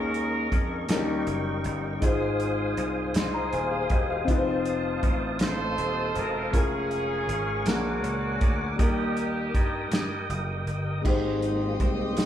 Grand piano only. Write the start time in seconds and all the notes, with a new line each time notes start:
Already playing: D#3 G#3 C#4 D#4 A#4
0.89 D#3 F3 C#4 D#4 A#4
0.95 G3
1.99 G#2 G#3 D#4 F4
2.06 C5
3.16 D#5 C6
3.34 A#5
3.53 C5 G#5
3.71 G#4 F5
3.91 G4 D#5
4.10 G#4 F5
4.24 C4 D#4
4.29 F4 B4
4.37 C5
6.51 G#3 C#4 F4 A#4
7.64 A#2 G#3 A#3 F#4 A#4
8.76 D#3 G3 A#3
8.80 D#4 A#4
11.02 G#2 G#3 D#4
11.06 G4 C5